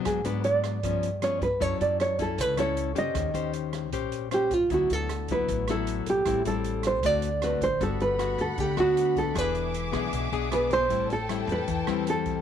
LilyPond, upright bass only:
\new Staff \with { instrumentName = "Upright bass" } { \clef bass \time 4/4 \key d \major \tempo 4 = 155 gis,8 gis,4. g,4. g,8 | fis,8 fis,4. cis,4. fis,8 | ees,8 ees,4. bes,,4. ees,8 | d,8 d,4. a,,4. b,,8 |
a,,8 a,,4. d,4. a,,8 | \key g \major g,,4. d,8 d,8 d,4. | e,,4. b,,8 b,,8 b,,4. | a,,4. e,8 e,8 e,4. | }